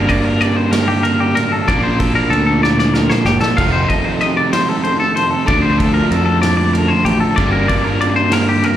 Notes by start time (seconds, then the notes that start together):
Already playing: G2 D3 G3 A#3 D4
0.09 D4 D5, kick, ride
0.25 F4 A#4
0.41 G4 D5, ride
0.56 C5
0.71 A#4, snare, ride
0.88 G4
1.03 G2 A#4, ride
1.20 G4
1.35 A2 A#4, ride
1.52 A4
1.67 A#1 A#2 F3 A#3 D4 D5, kick, ride
1.83 C5
1.99 D4 A4, kick, ride
2.15 F4 A#4
2.30 D2 A4, ride
2.46 A4
2.63 A#2 D5, snare
2.79 D5, snare
2.94 A4 A#4, snare
3.10 C5, snare
3.25 F#1 F4 G4, snare
3.41 A4, snare
3.57 F1 F2 C3 D#3 F3 A3 D#4 F5, kick, crash
3.72 C5
3.88 A4 D#5, kick, ride
4.05 C5
4.21 G4 D#5, ride
4.37 D5
4.53 C3 C5, snare, ride
4.69 A4
4.84 A4 C5, ride
5.00 A4
5.16 A4 C5, ride
5.31 A4
5.46 D2 D3 F3 A3 D4 D5, kick, ride
5.62 C5
5.78 F4 A4, kick, ride
5.94 A#4
6.10 F2 A4, ride
6.26 A4
6.42 A2 D5, snare, ride
6.57 D5
6.73 A4 A#4, ride
6.88 C5
7.05 A1 F4 G4, ride
7.20 A4
7.36 G1 G2 D3 G3 A#3 D4 D5, kick, ride
7.52 A#4
7.68 D5, kick, ride
7.72 F4
7.84 A#4
8.01 D5, ride
8.05 G4
8.16 C5
8.32 A#4, snare, ride
8.49 G4
8.63 G2 A#4, ride